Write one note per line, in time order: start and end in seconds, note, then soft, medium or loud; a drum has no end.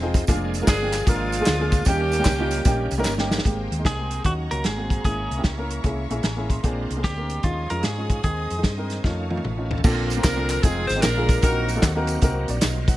0.00 0.22 E1 medium
0.00 0.25 F3 medium
0.00 0.25 G#3 medium
0.00 0.22 G#3 medium
0.00 0.25 C4 medium
0.00 0.22 C4 medium
0.00 0.25 D#4 medium
0.00 0.22 D#4 medium
0.00 0.23 F4 medium
0.00 0.25 G4 medium
0.00 0.23 G#4 medium
0.14 kick loud
0.14 closed hi-hat medium
0.14 tambourine medium
0.27 0.62 F1 loud
0.27 1.83 F3 medium
0.27 1.83 G#3 medium
0.27 0.55 G#3 medium
0.27 0.55 A#3 medium
0.27 1.83 A#3 medium
0.27 1.83 D4 medium
0.27 0.55 D4 medium
0.27 0.55 F4 medium
0.27 1.83 G#4 medium
0.27 0.55 G#4 loud
0.27 kick loud
0.27 closed hi-hat medium
0.27 tambourine medium
0.54 closed hi-hat medium
0.54 tambourine medium
0.61 0.73 G#3 medium
0.61 0.73 A#3 medium
0.61 0.73 D4 medium
0.61 0.74 F4 medium
0.61 0.74 A#4 medium
0.67 1.01 G1 loud
0.67 1.06 D4 medium
0.67 1.05 G#4 loud
0.67 kick loud
0.67 snare loud
0.67 clap loud
0.67 closed hi-hat medium
0.67 tambourine loud
0.81 1.01 G#3 medium
0.81 1.01 A#3 medium
0.81 1.02 D4 medium
0.81 1.02 F4 medium
0.81 1.02 G4 medium
0.93 snare soft
0.93 clap medium
0.93 closed hi-hat medium
0.93 tambourine medium
1.07 1.41 G#1 loud
1.07 1.34 G#3 medium
1.07 1.82 G#3 medium
1.07 1.34 A#3 medium
1.07 1.82 D4 medium
1.07 1.34 D4 medium
1.07 1.86 F4 loud
1.07 1.34 F4 medium
1.07 1.34 A#4 medium
1.07 kick loud
1.07 closed hi-hat medium
1.07 tambourine medium
1.32 closed hi-hat medium
1.32 tambourine medium
1.40 1.52 G#3 medium
1.40 1.52 A#3 medium
1.40 1.52 D4 medium
1.40 1.52 F4 medium
1.40 1.53 G#4 medium
1.46 1.81 D2 medium
1.46 snare loud
1.46 clap medium
1.46 closed hi-hat medium
1.46 tambourine medium
1.60 1.80 G#3 medium
1.60 1.80 A#3 medium
1.60 1.80 D4 medium
1.60 1.81 F4 medium
1.60 1.81 G#4 medium
1.72 kick medium
1.72 closed hi-hat medium
1.72 tambourine medium
1.85 2.20 D#2 loud
1.85 3.41 D#3 medium
1.85 2.49 D#3 medium
1.85 3.41 G3 medium
1.85 2.13 G3 medium
1.85 3.41 A#3 medium
1.85 3.01 A#3 medium
1.85 2.13 A#3 medium
1.85 3.41 C#4 medium
1.85 3.02 C#4 medium
1.85 2.13 C#4 medium
1.85 2.14 D#4 medium
1.85 3.41 G4 medium
1.85 3.05 G4 loud
1.85 2.14 G4 medium
1.85 kick loud
1.85 closed hi-hat loud
1.85 tambourine medium
2.12 closed hi-hat medium
2.12 tambourine medium
2.19 2.31 G3 medium
2.19 2.31 A#3 medium
2.19 2.31 C#4 medium
2.19 2.32 D#4 medium
2.19 2.32 G4 medium
2.25 2.59 C#2 medium
2.25 kick loud
2.25 snare loud
2.25 clap loud
2.25 closed hi-hat medium
2.25 tambourine loud
2.39 2.59 G3 medium
2.39 2.59 A#3 medium
2.39 2.60 C#4 medium
2.39 2.60 D#4 medium
2.39 2.60 F4 loud
2.51 closed hi-hat medium
2.51 tambourine medium
2.65 2.87 A#1 medium
2.65 2.92 G3 medium
2.65 2.92 A#3 medium
2.65 2.92 C#4 medium
2.65 2.92 D#4 medium
2.65 2.93 G4 loud
2.65 kick loud
2.65 closed hi-hat medium
2.65 tambourine medium
2.91 3.03 C2 medium
2.91 closed hi-hat medium
2.91 tambourine medium
2.98 3.10 G3 medium
2.98 3.10 A#3 medium
2.98 3.10 C#4 medium
2.98 3.11 D#4 medium
2.98 3.11 A#4 loud
3.05 3.39 G1 medium
3.05 snare medium
3.05 clap medium
3.05 tambourine medium
3.18 3.39 G3 medium
3.18 3.39 A#3 medium
3.18 3.39 C#4 medium
3.18 3.39 D#4 medium
3.18 3.39 G4 medium
3.18 snare medium
3.31 snare loud
3.31 tambourine medium
3.38 snare loud
3.44 3.67 G#1 medium
3.44 4.07 G#2 medium
3.44 4.23 G#3 medium
3.44 3.71 G#3 medium
3.44 3.51 A#3 soft
3.44 3.72 A#3 medium
3.44 3.72 C4 medium
3.44 3.72 G4 medium
3.44 4.24 G#4 medium
3.44 4.22 A#4 medium
3.44 4.23 G5 medium
3.44 4.24 G5 medium
3.44 7.41 A#5 medium
3.44 4.24 C6 medium
3.44 kick medium
3.44 closed hi-hat medium
3.49 4.25 C4 medium
3.71 3.83 D#2 medium
3.71 closed hi-hat medium
3.78 3.90 G#3 medium
3.78 3.90 A#3 medium
3.78 3.90 C4 medium
3.78 3.91 D#4 medium
3.85 4.25 G#4 medium
3.85 kick medium
3.85 snare medium
3.85 closed hi-hat medium
3.97 4.18 G#3 medium
3.97 4.18 A#3 medium
3.97 4.19 C4 medium
3.97 4.19 G4 medium
4.11 closed hi-hat medium
4.24 4.47 D#2 medium
4.24 4.62 D#3 medium
4.24 4.64 F#3 medium
4.24 4.43 A#3 medium
4.24 4.64 C#4 soft
4.24 4.43 C#4 medium
4.24 4.64 D#4 soft
4.24 4.43 D#4 medium
4.24 4.33 F#4 medium
4.24 4.44 F#4 medium
4.24 4.63 A#4 medium
4.24 4.64 D#5 medium
4.24 5.04 F#5 medium
4.24 4.64 C#6 medium
4.24 kick medium
4.24 closed hi-hat medium
4.50 4.63 C#2 medium
4.50 4.64 A#3 medium
4.50 4.65 C#4 medium
4.50 4.65 D#4 medium
4.50 4.65 F#4 medium
4.50 4.66 A#4 medium
4.50 closed hi-hat medium
4.63 4.99 G#1 medium
4.63 5.02 G#2 medium
4.63 5.03 G#3 medium
4.63 5.04 C4 medium
4.63 5.04 F#4 medium
4.63 5.04 G#4 medium
4.63 5.03 A#4 medium
4.63 5.03 C6 medium
4.63 snare medium
4.63 closed hi-hat medium
4.77 4.98 A#3 medium
4.77 4.98 C4 medium
4.77 4.98 F#4 medium
4.77 4.99 G#4 medium
4.90 kick medium
4.90 closed hi-hat medium
5.04 5.27 G#1 medium
5.04 5.67 G#2 medium
5.04 6.61 G#3 medium
5.04 5.31 A#3 medium
5.04 6.61 C#4 medium
5.04 5.31 C#4 medium
5.04 6.61 E4 medium
5.04 5.31 E4 medium
5.04 5.42 G#4 medium
5.04 5.32 G#4 medium
5.04 6.61 A#4 medium
5.04 6.63 E5 medium
5.04 6.63 C#6 medium
5.04 kick medium
5.04 closed hi-hat medium
5.31 5.42 C2 medium
5.31 closed hi-hat medium
5.37 5.49 A#3 medium
5.37 5.50 C#4 medium
5.37 5.50 E4 medium
5.37 5.50 G4 medium
5.44 5.78 C#2 medium
5.44 kick medium
5.44 snare medium
5.44 closed hi-hat medium
5.57 5.78 A#3 medium
5.57 5.78 C#4 medium
5.57 5.79 E4 medium
5.57 5.79 A#4 medium
5.70 closed hi-hat medium
5.84 6.06 C2 medium
5.84 6.02 A#3 medium
5.84 6.03 C#4 medium
5.84 6.03 E4 medium
5.84 6.03 G#4 medium
5.84 kick medium
5.84 closed hi-hat medium
6.10 6.22 A#1 medium
6.10 6.25 A#3 medium
6.10 6.26 C#4 medium
6.10 6.26 E4 medium
6.10 6.26 G#4 medium
6.10 6.24 E5 medium
6.10 closed hi-hat medium
6.23 6.58 A1 medium
6.23 6.49 G#5 medium
6.23 snare loud
6.23 closed hi-hat medium
6.36 6.58 A#3 medium
6.36 6.58 C#4 medium
6.36 6.58 E4 medium
6.36 6.58 G#4 medium
6.50 6.63 C6 medium
6.50 kick medium
6.50 closed hi-hat medium
6.63 6.86 A#1 medium
6.63 7.26 A#2 medium
6.63 7.42 G#3 medium
6.63 6.90 A#3 medium
6.63 7.42 C4 medium
6.63 6.91 C4 medium
6.63 7.43 D4 medium
6.63 6.91 D4 medium
6.63 6.91 G#4 medium
6.63 7.42 A#4 medium
6.63 7.44 D5 medium
6.63 7.44 C6 medium
6.63 kick medium
6.63 closed hi-hat medium
6.90 7.02 C2 medium
6.90 closed hi-hat medium
6.97 7.09 A#3 medium
6.97 7.10 C4 medium
6.97 7.10 D4 medium
6.97 7.10 G#4 medium
7.04 7.38 D2 medium
7.04 7.46 G4 medium
7.04 kick medium
7.04 snare medium
7.04 closed hi-hat medium
7.17 7.38 A#3 medium
7.17 7.38 C4 medium
7.17 7.38 D4 medium
7.17 7.39 A#4 medium
7.29 closed hi-hat medium
7.43 7.66 D#2 medium
7.43 8.07 D#3 medium
7.43 8.23 F3 medium
7.43 7.62 G#3 medium
7.43 7.63 C#4 medium
7.43 8.23 C#4 medium
7.43 8.23 D#4 soft
7.43 7.63 D#4 medium
7.43 7.71 F4 medium
7.43 7.63 F4 medium
7.43 8.23 G#4 medium
7.43 8.24 F5 medium
7.43 8.23 C#6 medium
7.43 9.82 D#6 medium
7.43 kick medium
7.43 closed hi-hat medium
7.70 7.82 F2 medium
7.70 7.85 G#3 medium
7.70 7.86 C#4 medium
7.70 7.86 D#4 medium
7.70 7.86 F4 medium
7.70 7.84 A#4 medium
7.70 closed hi-hat medium
7.83 8.18 G#2 medium
7.83 8.23 G#4 medium
7.83 snare loud
7.83 closed hi-hat medium
7.97 8.18 G#3 medium
7.97 8.18 C#4 medium
7.97 8.18 D#4 medium
7.97 8.19 F4 medium
8.09 kick medium
8.09 closed hi-hat medium
8.23 8.46 D#2 medium
8.23 8.86 D#3 medium
8.23 9.03 D#3 medium
8.23 8.51 G#3 medium
8.23 8.51 C4 medium
8.23 9.03 C4 medium
8.23 8.51 D#4 medium
8.23 8.61 G#4 medium
8.23 8.52 G#4 medium
8.23 9.03 G#4 medium
8.23 9.04 D#5 medium
8.23 9.04 C6 medium
8.23 kick medium
8.23 closed hi-hat medium
8.50 8.62 F2 medium
8.50 closed hi-hat medium
8.57 8.69 G#3 medium
8.57 8.70 C4 medium
8.57 8.70 D#4 medium
8.57 8.70 G#4 medium
8.63 8.98 G2 medium
8.63 kick medium
8.63 snare medium
8.63 closed hi-hat medium
8.77 8.98 G#3 medium
8.77 8.98 C4 medium
8.77 8.99 D#4 medium
8.77 8.99 A#4 medium
8.90 snare soft
8.90 closed hi-hat medium
9.03 9.38 F2 medium
9.03 9.82 D#3 medium
9.03 9.22 A3 medium
9.03 9.83 A3 medium
9.03 9.22 C#4 medium
9.03 9.83 C#4 medium
9.03 9.23 D#4 medium
9.03 9.82 F4 medium
9.03 9.23 F4 medium
9.03 9.83 F5 medium
9.03 9.83 A5 medium
9.03 9.83 C#6 medium
9.03 kick medium
9.03 snare soft
9.30 9.45 A3 medium
9.30 9.45 C#4 medium
9.30 9.46 D#4 medium
9.30 9.46 F4 medium
9.30 high tom medium
9.37 high tom medium
9.44 9.78 A1 medium
9.44 9.69 B4 medium
9.44 mid tom medium
9.57 9.78 A3 medium
9.57 9.78 C#4 medium
9.57 9.78 D#4 medium
9.57 9.78 F4 medium
9.69 10.08 A4 medium
9.69 floor tom medium
9.78 floor tom medium
9.84 10.18 A#1 loud
9.84 10.46 A#2 medium
9.84 10.62 D3 medium
9.84 10.62 F3 medium
9.84 10.11 A#3 medium
9.84 10.62 A#3 medium
9.84 10.62 C4 medium
9.84 10.11 C4 medium
9.84 10.11 D4 medium
9.84 10.62 F4 medium
9.84 10.11 F4 medium
9.84 10.12 A4 loud
9.84 kick loud
9.84 crash loud
9.84 tambourine medium
10.10 closed hi-hat medium
10.10 tambourine medium
10.16 10.29 A#3 medium
10.16 10.29 C4 medium
10.16 10.30 D4 medium
10.16 10.30 F4 medium
10.16 10.30 A#4 medium
10.24 10.58 C2 loud
10.24 10.61 D4 medium
10.24 10.61 F4 medium
10.24 10.61 A#4 loud
10.24 kick loud
10.24 snare loud
10.24 clap loud
10.24 closed hi-hat medium
10.24 tambourine loud
10.36 10.57 A#3 medium
10.36 10.57 C4 medium
10.36 10.58 D4 medium
10.36 10.58 F4 medium
10.36 10.58 A4 medium
10.50 clap loud
10.50 closed hi-hat medium
10.50 tambourine medium
10.63 10.86 F1 loud
10.63 11.03 D#3 medium
10.63 11.03 F3 medium
10.63 10.90 G#3 medium
10.63 11.02 G#3 medium
10.63 11.03 C4 medium
10.63 10.91 C4 medium
10.63 11.01 C4 medium
10.63 10.91 D#4 medium
10.63 11.01 D#4 medium
10.63 11.03 F4 medium
10.63 10.91 F4 medium
10.63 10.90 G#4 medium
10.63 10.91 G#4 medium
10.63 kick loud
10.63 closed hi-hat medium
10.63 tambourine medium
10.88 11.02 G#1 medium
10.88 11.02 C5 loud
10.88 snare soft
10.88 closed hi-hat medium
10.88 tambourine medium
10.96 11.03 G#3 medium
10.96 11.03 C4 medium
10.96 11.04 D#4 medium
10.96 11.04 F4 medium
10.96 11.04 G4 medium
11.02 11.37 A#1 loud
11.02 11.41 A#2 medium
11.02 11.44 D3 medium
11.02 11.44 F3 medium
11.02 11.43 G#3 medium
11.02 11.41 A#3 medium
11.02 11.41 D4 medium
11.02 11.43 F4 medium
11.02 11.41 F4 medium
11.02 11.41 A#4 loud
11.02 snare loud
11.02 clap loud
11.02 closed hi-hat medium
11.02 tambourine medium
11.16 11.37 G#3 medium
11.16 11.37 A#3 medium
11.16 11.37 D4 medium
11.16 11.38 F4 medium
11.16 11.38 G#4 medium
11.28 kick loud
11.28 closed hi-hat medium
11.28 tambourine medium
11.42 11.77 A#1 loud
11.42 12.05 A#2 medium
11.42 12.97 D#3 medium
11.42 12.97 F#3 medium
11.42 12.97 A#3 medium
11.42 11.70 A#3 medium
11.42 12.97 C4 medium
11.42 11.70 C4 medium
11.42 11.70 D#4 medium
11.42 12.19 D#4 medium
11.42 12.60 F#4 medium
11.42 12.19 F#4 medium
11.42 11.70 F#4 medium
11.42 11.79 A#4 medium
11.42 11.71 A#4 medium
11.42 kick loud
11.42 closed hi-hat loud
11.42 tambourine medium
11.68 closed hi-hat medium
11.68 tambourine medium
11.75 11.88 A#3 medium
11.75 11.88 C4 medium
11.75 11.88 D#4 medium
11.75 11.89 F#4 medium
11.75 11.89 A4 medium
11.82 12.16 D#2 loud
11.82 kick medium
11.82 snare loud
11.82 clap loud
11.82 closed hi-hat medium
11.82 tambourine loud
11.95 12.16 A#3 medium
11.95 12.17 C4 medium
11.95 12.17 D#4 medium
11.95 12.17 F#4 medium
11.95 12.17 A#4 loud
12.07 closed hi-hat medium
12.07 tambourine medium
12.21 12.45 C2 loud
12.21 12.49 A#3 medium
12.21 12.49 C4 medium
12.21 12.49 D#4 medium
12.21 12.50 F#4 medium
12.21 12.50 A#4 loud
12.21 kick loud
12.21 closed hi-hat medium
12.21 tambourine medium
12.48 12.60 A#1 medium
12.48 12.62 D5 medium
12.48 closed hi-hat medium
12.48 tambourine medium
12.61 12.96 B1 loud
12.61 12.87 F4 medium
12.61 12.87 D#5 medium
12.61 snare loud
12.61 clap loud
12.61 closed hi-hat loud
12.61 tambourine loud
12.88 12.97 D#4 medium
12.88 12.97 F#5 medium
12.88 kick loud
12.88 closed hi-hat medium
12.88 tambourine medium